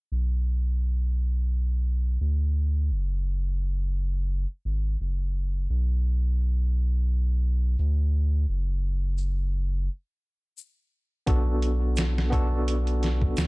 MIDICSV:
0, 0, Header, 1, 4, 480
1, 0, Start_track
1, 0, Tempo, 697674
1, 81, Time_signature, 4, 2, 24, 8
1, 9268, End_track
2, 0, Start_track
2, 0, Title_t, "Tine electric piano"
2, 0, Program_c, 0, 4
2, 7751, Note_on_c, 0, 59, 74
2, 7754, Note_on_c, 0, 62, 71
2, 7761, Note_on_c, 0, 66, 68
2, 7768, Note_on_c, 0, 69, 84
2, 7900, Control_c, 0, 64, 127
2, 8450, Note_off_c, 0, 59, 0
2, 8452, Note_off_c, 0, 62, 0
2, 8455, Note_off_c, 0, 66, 0
2, 8459, Note_off_c, 0, 69, 0
2, 8464, Note_on_c, 0, 59, 79
2, 8474, Note_on_c, 0, 62, 74
2, 8482, Note_on_c, 0, 66, 71
2, 8486, Note_on_c, 0, 69, 81
2, 9268, Note_off_c, 0, 59, 0
2, 9268, Note_off_c, 0, 62, 0
2, 9268, Note_off_c, 0, 66, 0
2, 9268, Note_off_c, 0, 69, 0
2, 9268, End_track
3, 0, Start_track
3, 0, Title_t, "Analog synth bass"
3, 0, Program_c, 1, 38
3, 79, Note_on_c, 1, 35, 81
3, 1500, Note_off_c, 1, 35, 0
3, 1520, Note_on_c, 1, 38, 94
3, 1997, Note_on_c, 1, 30, 95
3, 2008, Note_off_c, 1, 38, 0
3, 3067, Note_off_c, 1, 30, 0
3, 3200, Note_on_c, 1, 32, 78
3, 3415, Note_off_c, 1, 32, 0
3, 3445, Note_on_c, 1, 30, 71
3, 3903, Note_off_c, 1, 30, 0
3, 3922, Note_on_c, 1, 35, 94
3, 5341, Note_off_c, 1, 35, 0
3, 5360, Note_on_c, 1, 38, 97
3, 5820, Note_off_c, 1, 38, 0
3, 5840, Note_on_c, 1, 30, 93
3, 6801, Note_off_c, 1, 30, 0
3, 7755, Note_on_c, 1, 35, 97
3, 9178, Note_off_c, 1, 35, 0
3, 9202, Note_on_c, 1, 38, 88
3, 9268, Note_off_c, 1, 38, 0
3, 9268, End_track
4, 0, Start_track
4, 0, Title_t, "Drums"
4, 1518, Note_on_c, 9, 82, 67
4, 1587, Note_off_c, 9, 82, 0
4, 2483, Note_on_c, 9, 82, 68
4, 2551, Note_off_c, 9, 82, 0
4, 3435, Note_on_c, 9, 82, 73
4, 3504, Note_off_c, 9, 82, 0
4, 4399, Note_on_c, 9, 82, 76
4, 4468, Note_off_c, 9, 82, 0
4, 5355, Note_on_c, 9, 82, 68
4, 5423, Note_off_c, 9, 82, 0
4, 6315, Note_on_c, 9, 82, 74
4, 6384, Note_off_c, 9, 82, 0
4, 7276, Note_on_c, 9, 82, 74
4, 7345, Note_off_c, 9, 82, 0
4, 7755, Note_on_c, 9, 42, 77
4, 7756, Note_on_c, 9, 36, 104
4, 7824, Note_off_c, 9, 42, 0
4, 7825, Note_off_c, 9, 36, 0
4, 7997, Note_on_c, 9, 42, 61
4, 8066, Note_off_c, 9, 42, 0
4, 8230, Note_on_c, 9, 82, 66
4, 8236, Note_on_c, 9, 42, 82
4, 8245, Note_on_c, 9, 38, 104
4, 8299, Note_off_c, 9, 82, 0
4, 8305, Note_off_c, 9, 42, 0
4, 8314, Note_off_c, 9, 38, 0
4, 8382, Note_on_c, 9, 38, 52
4, 8451, Note_off_c, 9, 38, 0
4, 8479, Note_on_c, 9, 36, 84
4, 8481, Note_on_c, 9, 42, 64
4, 8548, Note_off_c, 9, 36, 0
4, 8550, Note_off_c, 9, 42, 0
4, 8723, Note_on_c, 9, 42, 85
4, 8792, Note_off_c, 9, 42, 0
4, 8855, Note_on_c, 9, 42, 40
4, 8924, Note_off_c, 9, 42, 0
4, 8963, Note_on_c, 9, 42, 63
4, 8972, Note_on_c, 9, 38, 40
4, 9032, Note_off_c, 9, 42, 0
4, 9041, Note_off_c, 9, 38, 0
4, 9092, Note_on_c, 9, 36, 88
4, 9160, Note_off_c, 9, 36, 0
4, 9196, Note_on_c, 9, 82, 73
4, 9197, Note_on_c, 9, 42, 75
4, 9207, Note_on_c, 9, 38, 100
4, 9265, Note_off_c, 9, 82, 0
4, 9266, Note_off_c, 9, 42, 0
4, 9268, Note_off_c, 9, 38, 0
4, 9268, End_track
0, 0, End_of_file